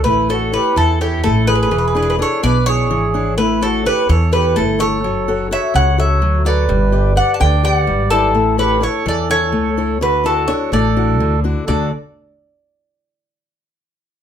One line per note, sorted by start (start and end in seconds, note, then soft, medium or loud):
0.04 0.56 A1 loud
0.04 0.51 A3 medium
0.04 0.27 B4 medium
0.08 0.29 E4 medium
0.29 0.51 E4 medium
0.29 0.52 F#4 medium
0.29 0.52 A4 soft
0.29 0.52 A4 medium
0.29 0.52 C#5 medium
0.52 0.91 E4 soft
0.52 0.76 G4 medium
0.52 0.91 A4 soft
0.52 0.75 B4 medium
0.52 0.91 C#5 medium
0.76 1.26 E2 medium
0.76 1.22 E3 medium
0.76 0.99 E4 medium
0.76 0.99 A4 medium
1.01 1.38 E4 medium
1.01 1.22 E4 medium
1.01 1.23 G4 medium
1.01 1.39 A4 medium
1.01 1.39 C#5 medium
1.24 1.72 A1 medium
1.24 1.70 A3 medium
1.24 1.46 E4 medium
1.24 1.46 A4 loud
1.47 1.67 E4 medium
1.47 2.15 G#4 medium
1.47 1.67 A4 soft
1.47 1.54 B4 medium
1.47 1.67 C#5 medium
1.55 1.61 B4 medium
1.63 1.70 B4 medium
1.71 2.21 E1 loud
1.71 2.17 E3 medium
1.71 1.77 B4 medium
1.78 1.85 B4 medium
1.88 1.93 B4 medium
1.95 2.17 D4 medium
1.95 2.18 E4 soft
1.95 2.18 G#4 medium
1.95 2.01 B4 medium
2.02 2.08 B4 medium
2.10 2.16 B4 medium
2.19 2.57 D4 soft
2.19 2.57 E4 soft
2.19 2.57 G#4 medium
2.19 2.42 A4 medium
2.19 2.43 C#5 medium
2.43 2.90 B1 medium
2.43 2.89 B2 medium
2.43 2.66 B4 medium
2.43 2.66 D5 loud
2.66 3.05 D4 medium
2.66 3.05 E4 medium
2.66 3.05 G#4 medium
2.66 3.34 G#4 medium
2.66 3.34 C#5 loud
2.90 3.38 G#1 medium
2.90 3.36 E3 medium
3.14 3.33 D4 medium
3.14 3.33 E4 soft
3.14 3.34 G#4 medium
3.38 3.88 A1 loud
3.38 3.84 A3 medium
3.38 3.61 E4 medium
3.38 3.62 B4 medium
3.61 3.84 E4 soft
3.61 3.84 F#4 medium
3.61 3.84 A4 medium
3.61 3.85 C#5 medium
3.85 4.23 E4 soft
3.85 4.08 G4 medium
3.85 4.23 A4 soft
3.85 4.08 B4 medium
3.85 4.24 C#5 medium
4.09 4.58 E2 loud
4.09 4.55 E3 medium
4.09 4.31 A4 medium
4.09 4.31 C#5 medium
4.32 4.70 E4 soft
4.32 4.55 G4 medium
4.32 4.70 A4 soft
4.32 4.55 B4 medium
4.32 4.71 C#5 medium
4.56 5.04 G1 medium
4.56 5.02 A3 medium
4.56 4.79 E4 medium
4.56 4.78 A4 medium
4.79 4.98 E4 medium
4.79 4.99 A4 soft
4.79 5.47 A4 medium
4.79 4.99 C#5 medium
4.79 5.47 C#5 medium
5.04 5.54 F#1 medium
5.04 5.50 F#3 medium
5.28 5.50 F#4 medium
5.28 5.50 A4 soft
5.28 5.50 C#5 medium
5.51 5.89 F#4 medium
5.51 5.89 A4 soft
5.51 5.89 C#5 medium
5.51 5.73 C#5 medium
5.51 5.75 E5 medium
5.74 6.22 C#2 loud
5.74 6.20 C#3 medium
5.74 5.96 C#5 medium
5.74 5.99 F#5 medium
5.98 6.36 F#4 soft
5.98 6.36 A4 soft
5.98 6.42 C#5 medium
5.98 6.37 C#5 medium
5.98 6.43 E5 loud
6.22 6.70 D2 medium
6.22 6.68 F#3 medium
6.45 6.64 F#4 soft
6.45 6.65 A4 soft
6.45 7.13 B4 medium
6.45 6.65 C#5 medium
6.45 7.19 D5 medium
6.69 7.19 G1 loud
6.69 7.15 G3 medium
6.92 7.14 G4 soft
6.92 7.15 B4 soft
6.92 7.16 D5 medium
7.16 7.54 G4 soft
7.16 7.55 B4 soft
7.16 7.55 D5 medium
7.16 7.34 D5 medium
7.16 7.34 F#5 loud
7.34 7.42 F#5 medium
7.34 7.40 A5 medium
7.40 7.89 D2 medium
7.40 7.86 D3 medium
7.40 7.63 G5 loud
7.44 7.65 D5 medium
7.63 8.02 G4 soft
7.63 8.02 B4 soft
7.63 8.02 D5 medium
7.63 8.10 D5 medium
7.63 8.09 F#5 loud
7.87 8.35 G#1 medium
7.87 8.34 G3 medium
8.10 8.56 E4 medium
8.10 8.30 G4 medium
8.10 8.55 A4 loud
8.10 8.31 B4 soft
8.10 8.31 D5 medium
8.35 8.85 A1 loud
8.35 8.81 A3 medium
8.58 8.79 E4 soft
8.58 8.83 G4 medium
8.58 8.81 A4 medium
8.58 8.81 B4 medium
8.58 8.81 C#5 medium
8.81 9.20 E4 soft
8.81 9.20 A4 soft
8.81 9.21 C#5 medium
8.81 9.05 C#5 medium
8.85 9.06 A4 medium
9.06 9.54 E2 medium
9.06 9.52 E3 medium
9.06 9.29 A4 medium
9.06 9.30 D5 medium
9.30 9.68 E4 medium
9.30 9.68 A4 soft
9.30 9.98 A4 medium
9.30 9.69 C#5 medium
9.30 9.98 C#5 loud
9.52 10.01 C#2 medium
9.52 9.99 A3 medium
9.77 9.97 E4 medium
9.77 9.97 A4 soft
9.77 9.97 C#5 medium
10.01 10.51 D2 loud
10.01 10.48 D3 medium
10.01 10.24 F#4 medium
10.01 10.24 B4 medium
10.24 10.47 D4 soft
10.24 10.47 E4 medium
10.24 10.47 F#4 medium
10.24 10.48 F#4 medium
10.24 10.50 A4 medium
10.48 10.86 D4 soft
10.48 10.87 E4 soft
10.48 10.87 F#4 medium
10.48 10.70 A4 medium
10.48 10.71 C#5 medium
10.72 11.20 A1 medium
10.72 11.19 A3 medium
10.72 11.40 A4 medium
10.72 11.40 D5 medium
10.96 11.35 D4 soft
10.96 11.35 E4 soft
10.96 11.35 F#4 medium
11.20 11.53 D2 medium
11.20 11.66 D3 medium
11.44 11.63 D4 soft
11.44 11.63 E4 soft
11.44 11.64 F#4 medium
11.66 11.90 D2 medium
11.66 11.90 D3 medium
11.66 11.90 A3 medium
11.66 11.90 D4 medium
11.66 11.90 F#4 medium
11.66 11.89 A4 medium
11.66 11.91 A4 medium
11.66 11.90 D5 medium